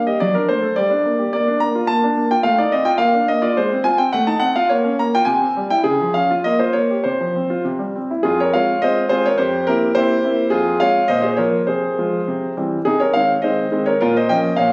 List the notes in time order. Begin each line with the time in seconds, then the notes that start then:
0.07 G4 D#5
0.20 F#3 D5
0.35 D4 A#4
0.49 A3 C5
0.62 A4
0.76 G3 D5
0.91 D4
1.05 A#3
1.19 G4
1.33 A#3 D5
1.48 D4
1.60 A#3 A#5
1.75 F4
1.87 A#3 A5
2.04 D4
2.17 A#3
2.31 F4 G5
2.43 A3 F5
2.58 D#4 D5
2.72 C4 D#5
2.85 F4 G5
2.98 A#3 F5
3.14 D4
3.28 A#3 D#5
3.42 F4 D5
3.57 G#3 C5
3.72 C4
3.84 F4 G#5
3.98 C4 G5
4.13 A3 F#5
4.27 D#4 A5
4.40 C4 F#5
4.56 F4 F5
4.69 A#3 C#5
4.84 C#4
4.99 A#3 A#5
5.15 F4 G5
5.25 C3 G#5
5.42 C4
5.57 G3
5.70 E4 G5
5.84 C#3 G#4
6.01 F3
6.14 C#4 F5
6.31 F4
6.44 A#3 D#5
6.59 F4 C5
6.73 A#3 C#5
6.90 G4
7.04 C3 C5
7.21 F3
7.36 C4
7.50 F4
7.65 C3
7.79 G3
7.95 C4
8.11 E4
8.23 F2 F4 G#4
8.40 A#4 C#5
8.53 G#3 C4 F4 C#5 F5
8.82 G#3 C4 F4 C5 D#5
9.09 G#3 C4 F4 G#4 C5
9.26 A#4 C#5
9.38 F2 G4 C5
9.67 A#3 C4 E4 G4 A#4
9.95 A#3 C4 E4 G4 C5
10.24 A#3 C4 E4
10.50 F2 F4 G#4
10.80 G#3 C4 F4 C#5 F5
11.08 A#2 C5 D#5
11.22 G#4 C5
11.37 F3 A#3 F4 A#4 C#5
11.67 C3 G#4 C5
11.98 F3 G#3 F4
12.28 C3
12.57 E3 G3 C4
12.85 C3 D#4 G#4
13.00 A#4 C#5
13.14 D#3 G#3 C4 C#5 F5
13.42 D#3 G#3 C4 C5 D#5
13.71 D#3 G#3 C4
13.86 A#4 C#5
14.01 A#2 F4 A#4
14.17 C5 D#5
14.29 F3 A#3 C#4 D#5 G5
14.57 A#2 C#5 F5